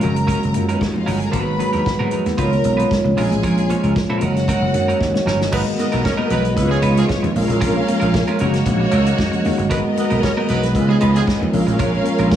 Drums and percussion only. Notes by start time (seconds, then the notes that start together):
0.01 closed hi-hat, low conga
0.16 closed hi-hat
0.28 kick, closed hi-hat
0.43 closed hi-hat, muted conga
0.54 closed hi-hat
0.69 closed hi-hat
0.81 kick, snare, muted conga
0.96 muted conga, high conga, low conga
1.07 open hi-hat
1.22 closed hi-hat
1.33 kick, closed hi-hat, muted conga
1.59 closed hi-hat, high conga
1.73 closed hi-hat
1.86 kick, snare
2.00 muted conga, high conga
2.11 closed hi-hat, low conga
2.26 snare, closed hi-hat
2.38 kick, closed hi-hat, muted conga
2.52 closed hi-hat, muted conga
2.64 closed hi-hat
2.79 closed hi-hat
2.91 kick, snare, muted conga
3.05 muted conga, high conga, low conga
3.17 open hi-hat
3.32 closed hi-hat
3.43 kick, closed hi-hat, low conga
3.58 closed hi-hat
3.69 closed hi-hat, high conga
3.83 closed hi-hat
3.96 kick, snare, muted conga
4.10 muted conga, high conga
4.21 closed hi-hat, low conga
4.36 snare, closed hi-hat
4.48 kick, closed hi-hat, muted conga, high conga
4.64 muted conga
4.74 closed hi-hat
4.89 closed hi-hat
5.01 kick, snare
5.15 snare, muted conga, high conga, low conga
5.27 snare
5.41 snare
5.52 kick, crash, muted conga
5.79 closed hi-hat, high conga
5.92 closed hi-hat
6.05 kick, snare
6.18 muted conga, high conga
6.30 closed hi-hat, low conga
6.45 closed hi-hat
6.57 kick, closed hi-hat, muted conga, high conga
6.82 closed hi-hat
6.97 closed hi-hat
7.09 kick, snare, muted conga
7.24 closed hi-hat, muted conga, high conga, low conga
7.36 open hi-hat
7.50 closed hi-hat
7.61 kick, closed hi-hat, muted conga
7.76 muted conga
7.88 closed hi-hat, high conga
8.01 closed hi-hat
8.14 kick, snare, muted conga
8.27 closed hi-hat, muted conga, high conga
8.39 closed hi-hat, low conga
8.54 snare, closed hi-hat
8.66 kick, closed hi-hat, muted conga, high conga
8.91 closed hi-hat
9.06 closed hi-hat
9.18 kick, snare, muted conga
9.33 closed hi-hat, high conga, low conga
9.44 open hi-hat
9.59 closed hi-hat
9.71 kick, closed hi-hat
9.97 closed hi-hat, high conga
10.10 closed hi-hat
10.23 kick, snare, muted conga
10.37 muted conga, high conga
10.48 closed hi-hat, low conga
10.63 snare, closed hi-hat
10.75 kick, closed hi-hat, muted conga, high conga
10.91 muted conga
11.01 closed hi-hat
11.16 closed hi-hat
11.27 kick, snare
11.43 high conga, low conga
11.53 open hi-hat
11.68 closed hi-hat
11.79 kick, closed hi-hat, muted conga
11.95 muted conga
12.05 closed hi-hat, high conga
12.18 closed hi-hat
12.32 kick, snare